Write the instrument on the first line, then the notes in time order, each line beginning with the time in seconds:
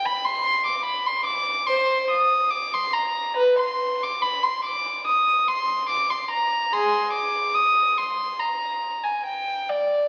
violin
0.05 B5
0.24 C6
0.66 D6
0.85 B5
1.06 C6
1.25 D6
1.66 C5 C6
2.11 D#6
2.50 D6
2.74 C6
2.93 A#5
3.37 B4
3.59 C6
4.03 D6
4.22 B5
4.43 C6
4.64 D6
5.07 D#6
5.48 C6
5.89 D6
6.10 C6
6.31 A#5
6.73 G#4 C6
7.12 D6
7.54 D#6
7.97 C6
8.40 A#5
9.03 G#5
9.26 G5
9.69 D5